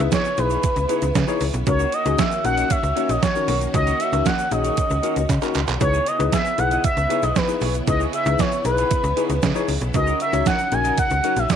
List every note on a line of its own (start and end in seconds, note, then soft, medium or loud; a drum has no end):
0.00 1.63 C#3 medium
0.00 1.63 B3 medium
0.00 0.16 D#4 medium
0.00 0.16 E4 medium
0.00 1.63 E4 medium
0.00 0.16 G#4 medium
0.00 0.16 B4 medium
0.11 0.31 B3 medium
0.11 0.24 E4 medium
0.11 0.23 G#4 medium
0.11 0.23 C#5 medium
0.11 0.40 C#5 medium
0.11 kick loud
0.11 snare loud
0.11 closed hi-hat loud
0.11 shaker medium
0.24 muted clean electric guitar stroke soft
0.24 closed hi-hat soft
0.24 shaker medium
0.37 0.57 B1 loud
0.37 0.60 D#4 medium
0.37 0.60 E4 medium
0.37 0.61 G#4 medium
0.37 0.61 B4 medium
0.37 1.42 B4 medium
0.37 muted clean electric guitar stroke soft
0.37 closed hi-hat medium
0.37 shaker medium
0.50 0.66 B3 soft
0.50 0.66 E4 medium
0.50 0.66 G#4 medium
0.50 0.66 C#5 medium
0.50 closed hi-hat soft
0.50 shaker medium
0.63 kick loud
0.63 closed hi-hat medium
0.63 shaker medium
0.76 0.86 C#2 medium
0.76 muted clean electric guitar stroke soft
0.76 closed hi-hat soft
0.76 shaker medium
0.89 1.09 B3 medium
0.89 1.06 D#4 medium
0.89 1.02 E4 medium
0.89 1.06 E4 medium
0.89 1.02 G#4 medium
0.89 1.07 G#4 medium
0.89 1.07 B4 medium
0.89 1.01 C#5 medium
0.89 closed hi-hat medium
0.89 shaker medium
1.02 1.12 C#2 medium
1.02 muted clean electric guitar stroke soft
1.02 closed hi-hat medium
1.02 shaker medium
1.15 1.25 C#3 loud
1.15 muted clean electric guitar stroke soft
1.15 kick loud
1.15 snare loud
1.15 closed hi-hat medium
1.15 shaker medium
1.27 1.39 B3 medium
1.27 1.45 D#4 medium
1.27 1.45 E4 medium
1.27 1.40 E4 medium
1.27 1.40 G#4 medium
1.27 1.45 G#4 medium
1.27 1.40 C#5 medium
1.27 1.46 C#5 loud
1.27 shaker medium
1.40 1.51 C#2 medium
1.40 muted clean electric guitar stroke soft
1.40 open hi-hat medium
1.40 shaker medium
1.53 1.64 B1 medium
1.53 muted clean electric guitar stroke soft
1.53 closed hi-hat soft
1.53 shaker medium
1.66 1.86 C#2 loud
1.66 5.77 D#3 medium
1.66 1.84 C#4 medium
1.66 5.77 C#4 medium
1.66 1.84 D#4 medium
1.66 5.77 F#4 medium
1.66 1.84 F#4 medium
1.66 1.84 A#4 medium
1.66 1.95 C#5 medium
1.66 muted clean electric guitar stroke soft
1.66 kick loud
1.66 closed hi-hat medium
1.66 shaker medium
1.79 1.91 A#3 medium
1.79 1.91 D#4 medium
1.79 1.92 F#4 medium
1.79 1.92 C#5 medium
1.79 shaker medium
1.92 2.08 A#3 medium
1.92 2.05 D#4 medium
1.92 2.05 F#4 medium
1.92 2.04 C#5 medium
1.92 2.21 D#5 loud
1.92 closed hi-hat medium
1.92 shaker medium
2.05 2.15 C#2 loud
2.05 2.23 C#4 medium
2.05 2.23 D#4 medium
2.05 2.23 F#4 medium
2.05 2.23 G#4 medium
2.05 muted clean electric guitar stroke soft
2.05 closed hi-hat soft
2.05 shaker medium
2.18 2.38 A#3 medium
2.18 2.31 D#4 medium
2.18 2.30 F#4 medium
2.18 2.30 C#5 medium
2.18 2.45 E5 loud
2.18 kick loud
2.18 snare loud
2.18 closed hi-hat loud
2.18 shaker medium
2.31 muted clean electric guitar stroke soft
2.31 closed hi-hat soft
2.31 shaker medium
2.44 2.64 A#1 medium
2.44 2.67 C#4 medium
2.44 2.68 D#4 medium
2.44 2.68 F#4 medium
2.44 2.68 A#4 medium
2.44 2.72 F#5 loud
2.44 muted clean electric guitar stroke soft
2.44 closed hi-hat medium
2.44 shaker medium
2.57 2.73 A#3 medium
2.57 2.73 D#4 medium
2.57 2.73 F#4 medium
2.57 2.73 D#5 medium
2.57 closed hi-hat medium
2.57 shaker medium
2.70 3.12 E5 loud
2.70 kick loud
2.70 closed hi-hat loud
2.70 shaker medium
2.83 2.93 C#2 medium
2.83 muted clean electric guitar stroke soft
2.83 closed hi-hat soft
2.83 shaker medium
2.95 3.15 A#3 loud
2.95 3.13 C#4 medium
2.95 3.08 D#4 medium
2.95 3.14 D#4 medium
2.95 3.08 F#4 medium
2.95 3.14 F#4 medium
2.95 3.08 C#5 loud
2.95 3.14 C#5 medium
2.95 closed hi-hat medium
2.95 shaker medium
3.09 3.19 A#1 medium
3.09 3.22 D#5 medium
3.09 muted clean electric guitar stroke soft
3.09 closed hi-hat medium
3.09 shaker medium
3.23 3.58 C#5 medium
3.23 kick loud
3.23 snare loud
3.23 closed hi-hat medium
3.23 shaker medium
3.35 3.52 C#4 medium
3.35 3.52 D#4 medium
3.35 3.53 F#4 medium
3.35 3.53 A#4 medium
3.35 muted clean electric guitar stroke soft
3.35 shaker medium
3.47 3.67 B1 loud
3.47 3.67 A#3 medium
3.47 3.60 D#4 medium
3.47 3.60 F#4 medium
3.47 3.60 C#5 medium
3.47 open hi-hat medium
3.47 shaker soft
3.61 muted clean electric guitar stroke soft
3.61 closed hi-hat soft
3.61 shaker medium
3.74 3.93 C#2 loud
3.74 3.91 C#4 medium
3.74 3.91 D#4 medium
3.74 3.91 F#4 medium
3.74 3.91 C#5 medium
3.74 4.02 D#5 loud
3.74 muted clean electric guitar stroke soft
3.74 kick loud
3.74 closed hi-hat medium
3.74 shaker medium
3.87 3.98 A#3 medium
3.87 3.99 D#4 medium
3.87 3.99 F#4 medium
3.87 4.00 C#5 medium
3.87 closed hi-hat soft
3.87 shaker medium
3.99 4.15 A#3 medium
3.99 4.12 D#4 medium
3.99 4.12 F#4 medium
3.99 4.12 D#5 medium
3.99 4.28 E5 medium
3.99 closed hi-hat medium
3.99 shaker medium
4.12 4.22 C#2 loud
4.12 4.30 C#4 medium
4.12 4.30 D#4 medium
4.12 4.30 F#4 medium
4.12 4.30 A#4 medium
4.12 muted clean electric guitar stroke soft
4.12 closed hi-hat soft
4.12 shaker soft
4.25 4.45 A#3 medium
4.25 4.38 D#4 medium
4.25 4.38 F#4 loud
4.25 4.37 C#5 loud
4.25 4.53 F#5 medium
4.25 kick loud
4.25 snare loud
4.25 closed hi-hat loud
4.25 shaker medium
4.38 muted clean electric guitar stroke soft
4.38 closed hi-hat soft
4.38 shaker medium
4.51 4.71 A#1 medium
4.51 4.74 C#4 medium
4.51 4.74 D#4 medium
4.51 4.75 F#4 medium
4.51 4.75 G#4 medium
4.51 5.55 D#5 loud
4.51 muted clean electric guitar stroke soft
4.51 closed hi-hat medium
4.51 shaker medium
4.64 4.80 A#3 soft
4.64 4.80 D#4 medium
4.64 4.80 F#4 medium
4.64 4.79 C#5 medium
4.64 closed hi-hat medium
4.64 shaker medium
4.77 kick loud
4.77 closed hi-hat loud
4.77 shaker medium
4.90 5.00 C#2 medium
4.90 muted clean electric guitar stroke soft
4.90 shaker medium
5.03 5.23 A#3 medium
5.03 5.20 C#4 medium
5.03 5.20 D#4 medium
5.03 5.15 D#4 medium
5.03 5.21 F#4 medium
5.03 5.15 F#4 medium
5.03 5.21 A#4 medium
5.03 5.14 C#5 medium
5.03 closed hi-hat medium
5.03 shaker medium
5.15 5.26 C#2 medium
5.15 muted clean electric guitar stroke soft
5.15 closed hi-hat soft
5.15 shaker medium
5.29 5.39 C#3 medium
5.29 muted clean electric guitar stroke soft
5.29 kick loud
5.29 clap medium
5.29 closed hi-hat medium
5.29 shaker medium
5.42 5.54 A#3 medium
5.42 5.59 C#4 medium
5.42 5.59 D#4 medium
5.42 5.54 D#4 medium
5.42 5.54 F#4 medium
5.42 5.59 F#4 medium
5.42 5.60 A#4 medium
5.42 5.54 C#5 medium
5.42 clap medium
5.42 closed hi-hat soft
5.42 shaker medium
5.54 5.65 C#2 medium
5.54 muted clean electric guitar stroke soft
5.54 clap medium
5.54 closed hi-hat medium
5.54 shaker soft
5.67 5.78 B1 medium
5.67 muted clean electric guitar stroke soft
5.67 clap medium
5.67 closed hi-hat soft
5.67 shaker soft
5.80 6.00 C#2 loud
5.80 11.56 C#3 medium
5.80 9.90 B3 medium
5.80 5.98 D#4 medium
5.80 9.90 E4 medium
5.80 5.98 E4 medium
5.80 5.98 G#4 medium
5.80 5.98 B4 medium
5.80 6.09 C#5 loud
5.80 muted clean electric guitar stroke soft
5.80 kick loud
5.80 closed hi-hat medium
5.80 shaker medium
5.93 6.05 B3 medium
5.93 6.05 E4 medium
5.93 6.06 G#4 medium
5.93 6.06 C#5 medium
5.93 shaker medium
6.06 6.22 B3 medium
6.06 6.18 E4 medium
6.06 6.18 G#4 medium
6.06 6.18 C#5 medium
6.06 6.32 D#5 loud
6.06 closed hi-hat medium
6.06 shaker medium
6.19 6.29 C#2 loud
6.19 6.36 D#4 medium
6.19 6.37 E4 medium
6.19 6.37 G#4 medium
6.19 6.37 B4 medium
6.19 muted clean electric guitar stroke soft
6.19 closed hi-hat soft
6.19 shaker medium
6.32 6.52 B3 medium
6.32 6.45 E4 medium
6.32 6.45 G#4 medium
6.32 6.44 C#5 medium
6.32 6.60 E5 loud
6.32 kick loud
6.32 snare loud
6.32 closed hi-hat loud
6.32 shaker medium
6.45 muted clean electric guitar stroke soft
6.45 closed hi-hat soft
6.45 shaker medium
6.58 6.78 B1 medium
6.58 6.81 D#4 medium
6.58 6.81 E4 medium
6.58 6.81 G#4 medium
6.58 6.82 B4 medium
6.58 6.84 F#5 loud
6.58 muted clean electric guitar stroke soft
6.58 closed hi-hat medium
6.58 shaker medium
6.71 6.87 B3 soft
6.71 6.87 E4 soft
6.71 6.87 G#4 medium
6.71 6.86 D#5 medium
6.71 closed hi-hat soft
6.71 shaker medium
6.84 7.25 E5 loud
6.84 kick loud
6.84 closed hi-hat medium
6.84 shaker medium
6.97 7.07 C#2 medium
6.97 muted clean electric guitar stroke soft
6.97 closed hi-hat soft
6.97 shaker medium
7.09 7.29 B3 medium
7.09 7.27 D#4 medium
7.09 7.27 E4 medium
7.09 7.22 E4 medium
7.09 7.27 G#4 medium
7.09 7.22 G#4 medium
7.09 7.27 B4 medium
7.09 7.21 C#5 medium
7.09 closed hi-hat medium
7.09 shaker medium
7.23 7.33 B1 medium
7.23 7.38 D#5 loud
7.23 muted clean electric guitar stroke medium
7.23 closed hi-hat soft
7.23 shaker medium
7.36 7.75 B4 medium
7.36 kick loud
7.36 snare loud
7.36 closed hi-hat medium
7.36 shaker medium
7.48 7.66 D#4 medium
7.48 7.66 E4 medium
7.48 7.66 G#4 medium
7.48 7.66 B4 medium
7.48 muted clean electric guitar stroke soft
7.48 shaker medium
7.61 7.81 B1 loud
7.61 7.81 B3 medium
7.61 7.74 E4 medium
7.61 7.74 G#4 medium
7.61 7.73 C#5 medium
7.61 open hi-hat medium
7.61 shaker soft
7.74 muted clean electric guitar stroke soft
7.74 closed hi-hat soft
7.74 shaker medium
7.87 8.07 C#2 loud
7.87 8.05 D#4 medium
7.87 8.05 E4 medium
7.87 8.05 G#4 medium
7.87 8.05 B4 medium
7.87 8.00 D#5 medium
7.87 muted clean electric guitar stroke soft
7.87 kick loud
7.87 closed hi-hat medium
7.87 shaker medium
8.00 8.12 B3 medium
8.00 8.12 E4 medium
8.00 8.13 G#4 medium
8.00 8.14 C#5 medium
8.00 shaker medium
8.13 8.29 B3 medium
8.13 8.25 E4 medium
8.13 8.25 G#4 medium
8.13 8.25 D#5 medium
8.13 8.41 E5 medium
8.13 closed hi-hat medium
8.13 shaker medium
8.26 8.36 C#2 loud
8.26 8.43 D#4 medium
8.26 8.44 E4 medium
8.26 8.44 G#4 medium
8.26 8.44 B4 medium
8.26 muted clean electric guitar stroke medium
8.26 closed hi-hat soft
8.26 shaker medium
8.39 8.59 B3 medium
8.39 8.52 E4 medium
8.39 8.51 G#4 medium
8.39 8.65 C#5 medium
8.39 8.51 C#5 medium
8.39 kick loud
8.39 snare loud
8.39 closed hi-hat loud
8.39 shaker medium
8.52 muted clean electric guitar stroke soft
8.52 closed hi-hat soft
8.52 shaker medium
8.65 8.84 B1 loud
8.65 8.88 D#4 medium
8.65 8.88 E4 medium
8.65 8.88 G#4 medium
8.65 9.65 B4 medium
8.65 8.89 B4 medium
8.65 muted clean electric guitar stroke soft
8.65 closed hi-hat medium
8.65 shaker medium
8.78 8.90 B3 medium
8.78 8.90 E4 medium
8.78 8.91 G#4 medium
8.78 8.91 C#5 medium
8.78 closed hi-hat soft
8.78 shaker medium
8.91 muted clean electric guitar stroke soft
8.91 kick loud
8.91 closed hi-hat medium
8.91 shaker medium
9.04 9.13 C#2 loud
9.04 muted clean electric guitar stroke soft
9.04 closed hi-hat soft
9.04 shaker medium
9.17 9.36 B3 medium
9.17 9.34 D#4 medium
9.17 9.34 E4 medium
9.17 9.29 E4 medium
9.17 9.34 G#4 medium
9.17 9.29 G#4 medium
9.17 9.34 B4 medium
9.17 9.28 C#5 medium
9.17 closed hi-hat medium
9.17 shaker medium
9.29 9.39 C#2 medium
9.29 muted clean electric guitar stroke medium
9.29 closed hi-hat medium
9.29 shaker medium
9.42 9.53 C#3 loud
9.42 muted clean electric guitar stroke soft
9.42 kick loud
9.42 snare loud
9.42 closed hi-hat medium
9.42 shaker medium
9.55 9.67 B3 medium
9.55 9.73 D#4 medium
9.55 9.73 E4 medium
9.55 9.67 E4 medium
9.55 9.73 G#4 medium
9.55 9.68 G#4 medium
9.55 9.68 C#5 medium
9.55 9.73 C#5 medium
9.55 shaker medium
9.68 9.78 C#2 medium
9.68 muted clean electric guitar stroke soft
9.68 open hi-hat medium
9.68 shaker soft
9.81 9.91 B1 medium
9.81 muted clean electric guitar stroke soft
9.81 closed hi-hat soft
9.81 shaker medium
9.94 10.14 C#2 loud
9.94 11.56 F#3 medium
9.94 10.12 C#4 medium
9.94 11.56 D#4 medium
9.94 10.12 D#4 medium
9.94 10.12 F#4 medium
9.94 10.12 A#4 medium
9.94 10.19 D#5 medium
9.94 muted clean electric guitar stroke soft
9.94 kick loud
9.94 closed hi-hat medium
9.94 shaker medium
10.07 10.19 C#4 medium
10.07 10.19 F#4 medium
10.07 10.20 A#4 medium
10.07 10.20 C#5 medium
10.07 shaker medium
10.20 10.35 C#4 medium
10.20 10.33 F#4 medium
10.20 10.32 A#4 medium
10.20 10.32 C#5 medium
10.20 10.45 E5 medium
10.20 closed hi-hat medium
10.20 shaker medium
10.33 10.43 C#2 loud
10.33 10.50 C#4 medium
10.33 10.50 D#4 medium
10.33 10.50 F#4 medium
10.33 10.51 C#5 medium
10.33 muted clean electric guitar stroke soft
10.33 closed hi-hat soft
10.33 shaker medium
10.46 10.66 C#4 medium
10.46 10.59 F#4 medium
10.46 10.58 A#4 medium
10.46 10.58 C#5 medium
10.46 10.75 F#5 loud
10.46 kick loud
10.46 snare loud
10.46 closed hi-hat loud
10.46 shaker medium
10.59 muted clean electric guitar stroke soft
10.59 closed hi-hat soft
10.59 shaker medium
10.71 10.91 A#1 medium
10.71 10.95 C#4 medium
10.71 10.95 D#4 medium
10.71 10.95 F#4 medium
10.71 10.95 A#4 medium
10.71 10.98 G#5 loud
10.71 muted clean electric guitar stroke soft
10.71 closed hi-hat medium
10.71 shaker medium
10.84 11.00 C#4 medium
10.84 11.00 F#4 medium
10.84 11.00 A#4 medium
10.84 11.00 D#5 medium
10.84 closed hi-hat soft
10.84 shaker medium
10.98 11.40 F#5 loud
10.98 kick loud
10.98 closed hi-hat loud
10.98 shaker medium
11.10 11.21 C#2 medium
11.10 muted clean electric guitar stroke soft
11.10 closed hi-hat soft
11.10 shaker medium
11.23 11.43 C#4 medium
11.23 11.41 C#4 medium
11.23 11.41 D#4 medium
11.23 11.36 F#4 medium
11.23 11.41 F#4 medium
11.23 11.36 A#4 medium
11.23 11.41 A#4 medium
11.23 11.35 C#5 medium
11.23 closed hi-hat medium
11.23 shaker medium
11.36 11.46 A#1 medium
11.36 11.53 E5 loud
11.36 muted clean electric guitar stroke soft
11.36 closed hi-hat medium
11.36 shaker medium
11.49 11.56 C#5 medium
11.49 kick loud
11.49 snare loud
11.49 closed hi-hat medium
11.49 shaker medium